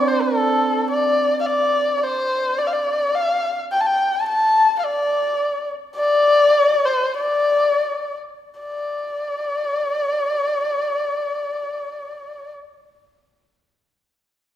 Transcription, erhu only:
0, 0, Header, 1, 2, 480
1, 0, Start_track
1, 0, Tempo, 560748
1, 318, Time_signature, 2, 2, 24, 8
1, 5120, Tempo, 588235
1, 6080, Tempo, 668896
1, 6560, Tempo, 761421
1, 7040, Tempo, 807537
1, 10589, End_track
2, 0, Start_track
2, 0, Title_t, "Erhu"
2, 0, Program_c, 0, 110
2, 67, Note_on_c, 0, 72, 65
2, 180, Note_on_c, 0, 69, 73
2, 193, Note_off_c, 0, 72, 0
2, 771, Note_off_c, 0, 69, 0
2, 776, Note_on_c, 0, 74, 70
2, 1174, Note_off_c, 0, 74, 0
2, 1207, Note_on_c, 0, 77, 58
2, 1250, Note_on_c, 0, 74, 76
2, 1262, Note_off_c, 0, 77, 0
2, 1690, Note_off_c, 0, 74, 0
2, 1690, Note_on_c, 0, 74, 50
2, 1739, Note_on_c, 0, 72, 70
2, 1751, Note_off_c, 0, 74, 0
2, 2209, Note_on_c, 0, 74, 71
2, 2222, Note_off_c, 0, 72, 0
2, 2287, Note_on_c, 0, 77, 56
2, 2300, Note_off_c, 0, 74, 0
2, 2337, Note_on_c, 0, 74, 67
2, 2350, Note_off_c, 0, 77, 0
2, 2699, Note_on_c, 0, 77, 69
2, 2712, Note_off_c, 0, 74, 0
2, 3074, Note_off_c, 0, 77, 0
2, 3181, Note_on_c, 0, 79, 70
2, 3258, Note_on_c, 0, 81, 59
2, 3271, Note_off_c, 0, 79, 0
2, 3307, Note_on_c, 0, 79, 73
2, 3320, Note_off_c, 0, 81, 0
2, 3556, Note_on_c, 0, 81, 69
2, 3568, Note_off_c, 0, 79, 0
2, 3663, Note_off_c, 0, 81, 0
2, 3668, Note_on_c, 0, 81, 74
2, 4068, Note_off_c, 0, 81, 0
2, 4099, Note_on_c, 0, 77, 55
2, 4149, Note_on_c, 0, 74, 75
2, 4162, Note_off_c, 0, 77, 0
2, 4875, Note_off_c, 0, 74, 0
2, 5103, Note_on_c, 0, 74, 89
2, 5831, Note_on_c, 0, 72, 73
2, 5843, Note_off_c, 0, 74, 0
2, 6082, Note_off_c, 0, 72, 0
2, 6097, Note_on_c, 0, 74, 68
2, 6774, Note_off_c, 0, 74, 0
2, 7051, Note_on_c, 0, 74, 57
2, 9373, Note_off_c, 0, 74, 0
2, 10589, End_track
0, 0, End_of_file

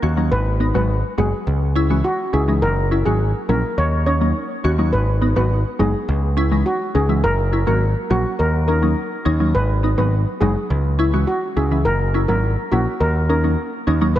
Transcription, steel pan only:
0, 0, Header, 1, 2, 480
1, 0, Start_track
1, 0, Key_signature, 5, "minor"
1, 0, Tempo, 576923
1, 262, Time_signature, 4, 2, 24, 8
1, 11809, End_track
2, 0, Start_track
2, 0, Title_t, "Steel pan"
2, 0, Program_c, 0, 114
2, 262, Note_on_c, 0, 71, 87
2, 347, Note_off_c, 0, 71, 0
2, 625, Note_on_c, 0, 71, 73
2, 708, Note_off_c, 0, 71, 0
2, 983, Note_on_c, 0, 68, 74
2, 1067, Note_off_c, 0, 68, 0
2, 1701, Note_on_c, 0, 66, 80
2, 1785, Note_off_c, 0, 66, 0
2, 1942, Note_on_c, 0, 68, 76
2, 2026, Note_off_c, 0, 68, 0
2, 2182, Note_on_c, 0, 70, 100
2, 2266, Note_off_c, 0, 70, 0
2, 2541, Note_on_c, 0, 68, 81
2, 2626, Note_off_c, 0, 68, 0
2, 2903, Note_on_c, 0, 70, 81
2, 2987, Note_off_c, 0, 70, 0
2, 3144, Note_on_c, 0, 73, 82
2, 3227, Note_off_c, 0, 73, 0
2, 3382, Note_on_c, 0, 73, 75
2, 3467, Note_off_c, 0, 73, 0
2, 4099, Note_on_c, 0, 71, 85
2, 4184, Note_off_c, 0, 71, 0
2, 4461, Note_on_c, 0, 71, 73
2, 4546, Note_off_c, 0, 71, 0
2, 4820, Note_on_c, 0, 68, 75
2, 4905, Note_off_c, 0, 68, 0
2, 5540, Note_on_c, 0, 66, 80
2, 5625, Note_off_c, 0, 66, 0
2, 5781, Note_on_c, 0, 68, 78
2, 5866, Note_off_c, 0, 68, 0
2, 6022, Note_on_c, 0, 70, 103
2, 6106, Note_off_c, 0, 70, 0
2, 6382, Note_on_c, 0, 70, 82
2, 6466, Note_off_c, 0, 70, 0
2, 6743, Note_on_c, 0, 66, 82
2, 6827, Note_off_c, 0, 66, 0
2, 6981, Note_on_c, 0, 70, 83
2, 7066, Note_off_c, 0, 70, 0
2, 7219, Note_on_c, 0, 70, 79
2, 7304, Note_off_c, 0, 70, 0
2, 7943, Note_on_c, 0, 71, 86
2, 8027, Note_off_c, 0, 71, 0
2, 8302, Note_on_c, 0, 71, 76
2, 8387, Note_off_c, 0, 71, 0
2, 8657, Note_on_c, 0, 68, 75
2, 8743, Note_off_c, 0, 68, 0
2, 9379, Note_on_c, 0, 66, 78
2, 9465, Note_off_c, 0, 66, 0
2, 9624, Note_on_c, 0, 68, 76
2, 9707, Note_off_c, 0, 68, 0
2, 9859, Note_on_c, 0, 70, 105
2, 9945, Note_off_c, 0, 70, 0
2, 10219, Note_on_c, 0, 70, 85
2, 10305, Note_off_c, 0, 70, 0
2, 10579, Note_on_c, 0, 66, 81
2, 10665, Note_off_c, 0, 66, 0
2, 10819, Note_on_c, 0, 70, 82
2, 10905, Note_off_c, 0, 70, 0
2, 11061, Note_on_c, 0, 70, 80
2, 11146, Note_off_c, 0, 70, 0
2, 11779, Note_on_c, 0, 71, 91
2, 11809, Note_off_c, 0, 71, 0
2, 11809, End_track
0, 0, End_of_file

